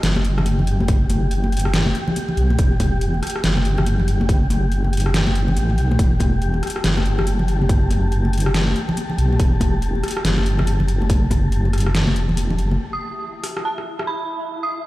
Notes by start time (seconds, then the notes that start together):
Already playing: G4 G5
0.03 F#1, snare, closed hi-hat
0.16 cross-stick, high conga
0.25 closed hi-hat
0.38 cross-stick, low conga
0.45 closed hi-hat, high conga
0.59 low conga
0.67 closed hi-hat
0.80 high conga
0.88 kick, closed hi-hat
1.10 closed hi-hat, high conga
1.31 closed hi-hat
1.44 high conga
1.52 closed hi-hat
1.57 closed hi-hat
1.59 closed hi-hat
1.65 cross-stick
1.74 snare, closed hi-hat
1.86 high conga
1.95 closed hi-hat
2.08 low conga
2.16 closed hi-hat, high conga
2.29 low conga
2.37 B1, closed hi-hat
2.50 high conga
2.59 E1, kick, closed hi-hat
2.80 kick, closed hi-hat, high conga
3.01 closed hi-hat
3.14 high conga
3.23 cross-stick, closed hi-hat
3.27 closed hi-hat
3.30 closed hi-hat
3.36 cross-stick
3.44 F#1, snare, closed hi-hat
3.57 cross-stick, high conga
3.65 closed hi-hat
3.78 cross-stick, low conga
3.86 closed hi-hat, high conga
3.99 low conga
4.08 closed hi-hat
4.21 high conga
4.29 kick, closed hi-hat
4.50 closed hi-hat, high conga
4.72 closed hi-hat
4.84 high conga
4.93 closed hi-hat
4.97 closed hi-hat
5.00 closed hi-hat
5.06 cross-stick
5.14 snare, closed hi-hat
5.27 high conga
5.35 closed hi-hat
5.48 low conga
5.56 A1, closed hi-hat, high conga
5.70 low conga
5.78 B1, closed hi-hat
5.91 high conga
5.99 E1 A5, kick, closed hi-hat
6.20 kick, closed hi-hat, high conga
6.42 closed hi-hat
6.54 high conga
6.63 cross-stick, closed hi-hat
6.67 closed hi-hat
6.70 closed hi-hat
6.76 cross-stick
6.84 F#1, snare, closed hi-hat
6.97 cross-stick, high conga
7.06 closed hi-hat
7.18 cross-stick, low conga
7.27 closed hi-hat, high conga
7.39 low conga
7.48 closed hi-hat
7.62 high conga
7.69 kick, closed hi-hat
7.90 closed hi-hat, high conga
8.12 closed hi-hat
8.25 high conga
8.33 closed hi-hat
8.38 closed hi-hat
8.40 closed hi-hat
8.46 cross-stick
8.54 snare, closed hi-hat
8.68 high conga
8.76 closed hi-hat
8.89 low conga
8.97 closed hi-hat, high conga
9.10 low conga
9.18 B1, closed hi-hat
9.32 high conga
9.39 E1, kick, closed hi-hat
9.61 kick, closed hi-hat, high conga
9.82 closed hi-hat
9.95 high conga
10.04 cross-stick, closed hi-hat
10.08 closed hi-hat
10.11 closed hi-hat
10.17 cross-stick
10.24 F#1, snare, closed hi-hat
10.37 cross-stick, high conga
10.46 closed hi-hat
10.59 cross-stick, low conga
10.67 closed hi-hat, high conga
10.80 low conga
10.88 closed hi-hat
11.02 high conga
11.10 kick, closed hi-hat
11.31 kick, closed hi-hat, high conga
11.52 closed hi-hat
11.65 high conga
11.73 cross-stick, closed hi-hat
11.78 closed hi-hat
11.80 closed hi-hat
11.86 cross-stick
11.95 snare, closed hi-hat
12.07 high conga
12.16 E1, closed hi-hat
12.29 low conga
12.37 closed hi-hat, high conga
12.50 low conga
12.59 F#1, closed hi-hat
12.71 high conga
12.79 E4 E5
12.93 D#6
13.44 cross-stick, open hi-hat
13.57 cross-stick
13.65 A5
13.78 cross-stick
13.99 cross-stick
14.07 B5
14.63 D#6